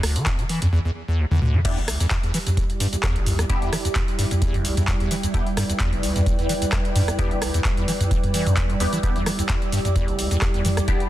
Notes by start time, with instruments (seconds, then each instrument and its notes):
Already playing: analog synth pad G3 E4
0.03 acid bass D2, cross-stick, open hi-hat
0.16 acid bass E3, closed hi-hat
0.26 acid bass E2, kick, clap, closed hi-hat
0.39 acid bass D3, closed hi-hat
0.49 acid bass E3, open hi-hat
0.62 acid bass E2, closed hi-hat, mid tom
0.73 acid bass E2
0.85 acid bass E2
1.08 acid bass E2
1.19 acid bass D2
1.31 acid bass E2, high tom
1.42 acid bass D2, mid tom
1.54 acid bass E3, mid tom
1.65 acid bass E2, analog synth pad G3 G4, synth stab B3 D4 E4 G4, ambient pad E4, kick, closed hi-hat, crash, shaker
1.77 acid bass E1, ambient pad D5, closed hi-hat
1.88 acid bass D2, cross-stick, open hi-hat, shaker
2.00 acid bass E2, closed hi-hat, shaker
2.11 acid bass E2, kick, clap, closed hi-hat, shaker
2.23 acid bass E2, closed hi-hat
2.34 acid bass E3, open hi-hat, shaker
2.47 acid bass E2, closed hi-hat, mid tom, shaker
2.57 acid bass E2, kick, closed hi-hat, shaker
2.70 closed hi-hat
2.80 acid bass G2, open hi-hat, shaker
2.93 acid bass E2, closed hi-hat, shaker
3.03 acid bass E2, kick, cross-stick, clap, closed hi-hat, shaker
3.16 acid bass E1, closed hi-hat
3.26 acid bass D2, mid tom, open hi-hat, shaker
3.39 acid bass E2, ambient pad G5, cross-stick, closed hi-hat, shaker
3.49 acid bass E2, synth stab B3 D4 E4 G4, kick, closed hi-hat, shaker
3.62 acid bass E2, closed hi-hat
3.72 acid bass E3, cross-stick, open hi-hat, shaker
3.85 acid bass E2, closed hi-hat, shaker
3.95 acid bass E2, kick, clap, closed hi-hat, shaker
4.08 closed hi-hat
4.19 acid bass G2, open hi-hat, shaker
4.31 acid bass E2, closed hi-hat, mid tom, shaker
4.42 acid bass E2, kick, closed hi-hat, shaker
4.54 acid bass E1, closed hi-hat, mid tom
4.65 acid bass D2, open hi-hat, shaker
4.77 acid bass E2, closed hi-hat, mid tom, shaker
4.88 acid bass E2, kick, clap, closed hi-hat, shaker
5.00 acid bass E2, closed hi-hat
5.11 acid bass E3, open hi-hat, shaker
5.23 acid bass E2, closed hi-hat, shaker
5.34 acid bass E2, synth stab B3 D4 E4 G4, analog synth pad B4, kick, closed hi-hat, shaker
5.47 closed hi-hat
5.57 acid bass G2, cross-stick, open hi-hat, shaker
5.69 acid bass E2, closed hi-hat, shaker
5.80 acid bass E2, kick, clap, closed hi-hat, shaker
5.93 acid bass E1, closed hi-hat
6.03 acid bass D2, open hi-hat, shaker
6.16 acid bass E2, closed hi-hat, mid tom, shaker
6.26 acid bass E2, kick, closed hi-hat, shaker
6.39 acid bass E2, closed hi-hat
6.49 acid bass E3, open hi-hat, shaker
6.62 acid bass E2, closed hi-hat, shaker
6.72 acid bass E2, kick, cross-stick, clap, closed hi-hat, shaker
6.85 closed hi-hat
6.96 acid bass G2, mid tom, open hi-hat, shaker
7.08 acid bass E2, cross-stick, closed hi-hat, shaker
7.19 acid bass E2, synth stab B3 D4 E4 G4, kick, closed hi-hat, shaker
7.31 acid bass E1, closed hi-hat
7.42 acid bass D2, cross-stick, open hi-hat, shaker
7.54 acid bass E2, closed hi-hat, shaker
7.65 acid bass E2, kick, clap, closed hi-hat, shaker
7.77 acid bass E2, closed hi-hat
7.88 acid bass E3, open hi-hat, shaker
8.00 acid bass E2, closed hi-hat, mid tom, shaker
8.11 acid bass E2, kick, closed hi-hat, shaker
8.24 closed hi-hat, mid tom
8.34 acid bass E3, open hi-hat, shaker
8.47 acid bass E2, closed hi-hat, mid tom, shaker
8.57 acid bass E2, kick, clap, closed hi-hat, shaker
8.70 acid bass G2, closed hi-hat
8.80 acid bass E2, synth stab B3 D4 E4 G4, open hi-hat, shaker
8.93 acid bass E3, closed hi-hat, shaker
9.03 acid bass E2, synth stab B3 D4 E4 G4, analog synth pad G4, kick, closed hi-hat, shaker
9.16 acid bass E2, closed hi-hat
9.26 acid bass E3, cross-stick, open hi-hat, shaker
9.39 acid bass E2, closed hi-hat, shaker
9.49 acid bass E2, kick, clap, closed hi-hat, shaker
9.62 closed hi-hat
9.72 acid bass G2, open hi-hat, shaker
9.85 acid bass E2, closed hi-hat, mid tom, shaker
9.96 acid bass E2, kick, closed hi-hat, shaker
10.08 acid bass E1, closed hi-hat
10.19 acid bass D2, open hi-hat, shaker
10.31 acid bass E2, closed hi-hat, shaker
10.41 acid bass E2, kick, cross-stick, clap, closed hi-hat, shaker
10.52 acid bass E2, ambient pad A5, closed hi-hat
10.65 acid bass E3, mid tom, open hi-hat, shaker
10.77 acid bass E2, cross-stick, closed hi-hat, shaker
10.88 acid bass E2, synth stab B3 D4 E4 G4, kick, closed hi-hat, shaker
11.00 closed hi-hat